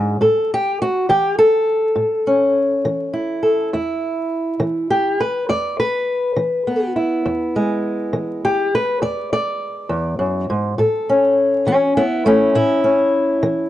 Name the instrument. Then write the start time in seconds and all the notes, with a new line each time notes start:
steel-string acoustic guitar
Already playing: G#2 G#3 D4 G#4
0.21 A2 A4
0.54 G4
0.82 F#4
1.09 E3 G4
1.39 A4
1.96 A2
2.27 C#4
2.85 E3
3.14 E4
3.43 A4
3.73 E2 E4
4.60 E3
4.90 G4
5.20 B4
5.49 E2 D5
5.80 B4
6.36 E3
6.67 B3
6.96 E4
7.26 E2
7.56 G#3
8.13 E3
8.45 G4
8.75 B4
9.02 E2 D5
9.33 D5
9.89 E2
10.19 F#2
10.50 G#2
10.78 A2 A4
11.09 C#4
11.66 E3 C#4 F#4
11.97 B3 E4
12.26 A3 C#4
12.55 A2 E4
12.84 C#4
13.43 E3